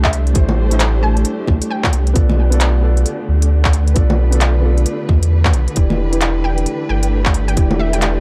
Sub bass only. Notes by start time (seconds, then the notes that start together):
Already playing: C2
0.35 A1
1.48 C2
1.93 C2
2.16 B1
3.28 D2
3.96 B1
5.09 E2
5.54 B1
5.77 E1
6.89 G1
7.57 E1